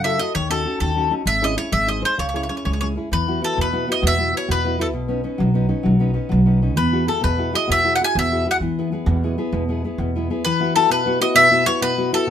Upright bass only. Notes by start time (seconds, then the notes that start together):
Already playing: F#2
0.35 D#2
0.80 D#2
1.26 G#1
1.73 G#1
2.19 C#2
2.65 C#2
3.12 E2
3.58 E2
4.03 E2
4.49 E2
4.95 B1
5.40 B1
5.86 B1
6.32 B1
6.77 E2
7.24 E2
7.69 E2
8.15 E2
8.60 E2
9.06 E2
9.52 E2
9.98 E2